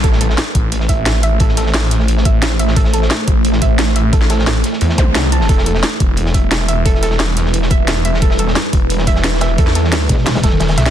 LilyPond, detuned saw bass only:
\new Staff \with { instrumentName = "Detuned saw bass" } { \clef bass \time 4/4 \key a \minor \tempo 4 = 176 a,,4 r8 a,,2~ a,,8 | a,,1 | a,,4 r8 a,,2~ a,,8 | a,,4 a,,8 r8 e,4 c,4 |
e,,4 r8 e,,2~ e,,8 | e,,1 | e,,4 r8 e,,2~ e,,8 | e,4. r4 e,,4 b,,8 | }